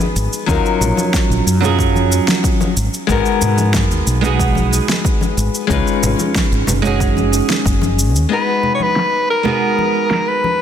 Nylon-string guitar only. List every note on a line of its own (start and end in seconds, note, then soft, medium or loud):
0.00 0.43 G#3 medium
0.00 0.44 B3 medium
0.00 0.45 D#4 medium
0.00 0.45 F#4 medium
0.00 0.46 G#4 medium
0.46 1.58 F#3 medium
0.46 1.59 C#4 medium
0.46 1.59 D#4 medium
0.46 1.59 F4 medium
0.51 1.60 A#4 medium
1.60 2.74 F#3 medium
1.60 2.74 C#4 medium
1.60 2.75 D#4 medium
1.60 2.75 F4 medium
1.65 2.76 G#4 loud
3.07 4.19 G#3 medium
3.07 4.19 B3 medium
3.07 4.20 D#4 medium
3.07 4.20 F#4 medium
3.12 4.21 A#4 loud
4.21 5.65 G#3 medium
4.21 5.66 B3 medium
4.21 5.66 D#4 medium
4.21 5.67 F#4 medium
4.25 5.67 G#4 medium
5.67 6.79 G#3 medium
5.67 6.80 C#4 medium
5.67 6.80 D#4 medium
5.67 6.81 F4 medium
5.72 6.81 B4 loud
6.82 8.26 G#3 medium
6.82 8.27 C#4 medium
6.82 8.27 D#4 medium
6.82 8.28 F#4 medium
6.87 8.28 G#4 loud
8.29 9.40 G#3 medium
8.29 9.41 B3 medium
8.29 9.42 D#4 medium
8.29 9.42 F#4 medium
8.33 9.43 B4 medium
9.43 10.62 G#3 medium
9.43 10.62 B3 medium
9.43 10.62 D#4 medium
9.43 10.62 F#4 medium
9.48 10.62 G#4 medium